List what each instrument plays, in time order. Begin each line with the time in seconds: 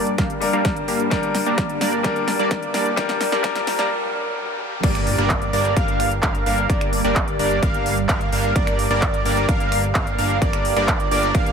Already playing: analog synth pad G2 G3 A#3 D4, supersaw synth G3 A#3 D4 A#4 D5, grand piano G3 A#3 D4 A#4, riser
0.07 closed hi-hat
0.18 supersaw synth G3 A#3 D4 A#4 F5, kick, snare, closed hi-hat
0.30 closed hi-hat
0.40 grand piano G3 A#3 D4 A#4, open hi-hat
0.53 supersaw synth G3 A#3 D4 A#4 F5, closed hi-hat
0.65 kick, snare, closed hi-hat
0.76 closed hi-hat
0.88 supersaw synth G3 A#3 D4 A#4 F5, open hi-hat
1.00 closed hi-hat
1.10 grand piano G3 A#3 D4 A#4, supersaw synth G3 A#3 D4 A#4 D5, kick, snare, closed hi-hat
1.23 closed hi-hat
1.35 snare, open hi-hat
1.46 supersaw synth G3 A#3 D4 A#4 D5, closed hi-hat
1.58 kick, snare, closed hi-hat
1.69 closed hi-hat
1.81 supersaw synth G3 A#3 D4 A#4 D5, snare, open hi-hat
1.93 closed hi-hat
2.03 grand piano G3 A#3 D4 A#4, supersaw synth G3 A#3 D4 A#4 D5, kick, snare, closed hi-hat
2.16 closed hi-hat
2.28 snare, open hi-hat
2.39 supersaw synth G3 A#3 D4 A#4 D5, closed hi-hat
2.51 kick, snare, closed hi-hat
2.63 closed hi-hat
2.74 supersaw synth G3 A#3 D4 A#4 D5, snare, open hi-hat
2.86 closed hi-hat
2.96 grand piano G3 A#3 D4 A#4, supersaw synth A#3 D4 A#4 D5, kick, snare, closed hi-hat
3.09 snare, closed hi-hat
3.21 snare, open hi-hat
3.32 supersaw synth G3 A#3 D4 A#4 D5, snare, closed hi-hat
3.43 grand piano G3 A#3 D4 A#4, kick, snare, closed hi-hat
3.56 snare, closed hi-hat
3.67 snare, open hi-hat
3.79 supersaw synth G3 A#3 D4 A#4 D5, snare, closed hi-hat
4.83 analog synth bass G1, supersaw synth G3 A#3 D4 A#4 D5, analog synth pad G3 G4 A#4 D5, analog synth lead D5, kick, closed hi-hat, crash, impact
4.95 finger snap, closed hi-hat
5.07 open hi-hat
5.18 analog synth bass G1, supersaw synth G3 A#3 D4 A#4 D5, analog synth lead D5, closed hi-hat
5.30 kick, clap, closed hi-hat
5.42 closed hi-hat
5.53 analog synth bass G1, supersaw synth G3 A#3 D4 A#4 D5, analog synth lead D5, open hi-hat
5.65 closed hi-hat
5.76 analog synth bass G1, supersaw synth G3 A#3 D4 A#4 F5, analog synth lead F5, kick, closed hi-hat
5.88 closed hi-hat
6.00 finger snap, open hi-hat
6.11 closed hi-hat
6.23 analog synth bass G1, supersaw synth G3 A#3 D4 A#4 F5, analog synth lead F5, kick, clap, closed hi-hat
6.35 closed hi-hat
6.46 analog synth bass G1, supersaw synth G3 A#3 D4 A#4 F5, analog synth lead F5, open hi-hat
6.58 closed hi-hat
6.70 analog synth bass G1, supersaw synth G3 A#3 D4 A#4 D5, analog synth lead D5, kick, closed hi-hat
6.81 finger snap, closed hi-hat
6.93 open hi-hat
7.04 analog synth bass G1, supersaw synth G3 A#3 D4 A#4 D5, analog synth lead D5, closed hi-hat
7.16 kick, clap, closed hi-hat
7.28 closed hi-hat
7.39 analog synth bass G1, supersaw synth G3 A#3 D4 A#4 D5, analog synth lead D5, open hi-hat
7.51 closed hi-hat
7.63 analog synth bass G1, supersaw synth G3 A#3 D4 A#4 F5, analog synth lead F5, kick, closed hi-hat
7.74 closed hi-hat
7.86 open hi-hat
7.98 closed hi-hat
8.09 analog synth bass G1, supersaw synth G3 A#3 D4 A#4 F5, analog synth lead F5, kick, clap, closed hi-hat
8.21 closed hi-hat
8.32 analog synth bass G1, supersaw synth G3 A#3 D4 A#4 F5, analog synth lead F5, open hi-hat
8.44 closed hi-hat
8.56 analog synth bass G1, supersaw synth G3 A#3 D4 A#4 D5, analog synth lead D5, kick, closed hi-hat
8.67 finger snap, closed hi-hat
8.79 open hi-hat
8.91 analog synth bass G1, supersaw synth G3 A#3 D4 A#4 D5, analog synth lead D5, closed hi-hat
9.02 kick, clap, closed hi-hat
9.14 closed hi-hat
9.25 analog synth bass G1, supersaw synth G3 A#3 D4 A#4 D5, analog synth lead D5, open hi-hat
9.37 closed hi-hat
9.49 analog synth bass G1, supersaw synth G3 A#3 D4 A#4 F5, analog synth lead F5, kick, closed hi-hat
9.60 closed hi-hat
9.72 finger snap, open hi-hat
9.84 closed hi-hat
9.95 analog synth bass G1, supersaw synth G3 A#3 D4 A#4 F5, analog synth lead F5, kick, clap, closed hi-hat
10.07 closed hi-hat
10.18 analog synth bass G1, supersaw synth G3 A#3 D4 A#4 F5, analog synth lead F5, open hi-hat
10.30 closed hi-hat
10.42 analog synth bass G1, supersaw synth G3 A#3 D4 A#4 D5, analog synth lead D5, kick, closed hi-hat
10.53 finger snap, closed hi-hat
10.65 open hi-hat
10.77 analog synth bass G1, supersaw synth G3 A#3 D4 A#4 D5, analog synth lead D5, finger snap, closed hi-hat
10.88 kick, clap, closed hi-hat
11.00 closed hi-hat
11.11 analog synth bass G1, supersaw synth G3 A#3 D4 A#4 D5, analog synth lead D5, open hi-hat
11.23 closed hi-hat
11.35 analog synth bass G1, supersaw synth G3 A#3 D4 A#4 F5, analog synth lead F5, kick, closed hi-hat
11.46 closed hi-hat